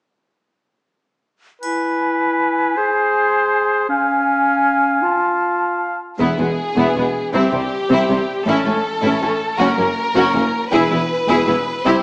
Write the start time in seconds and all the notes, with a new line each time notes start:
1.62 E4 B4 G#5, triangle
2.77 G#4 C5
3.89 C#4 F5 G#5
5.02 F4 A5
6.19 E1 E2 B3 E4 G#4
6.38 E1 E2 G#3 B3
6.76 E1 E2 B3 E4
6.95 E1 E2 G#3 B3
7.33 C2 C3 C4 E4 G4
7.52 C2 C3 G3 C4
7.89 C2 C3 C4 E4
8.09 C2 C3 G3 C4
8.46 A1 A2 C#4 E4 A4
8.65 A1 A2 A3 C#4
9.01 A1 A2 C#4 E4
9.21 A1 A2 A3 C#4
9.58 F#1 F#2 C#4 F#4 A#4
9.78 F#1 F#2 A#3 C#4
10.15 F#1 F#2 C#4 F#4
10.33 F#1 F#2 A#3 C#4
10.72 E1 E2 E4 G#4 B4
10.91 E1 E2 B3 E4
11.28 E1 E2 E4 G#4
11.47 E1 E2 B3 E4
11.85 C2 C3 E4 G4 C5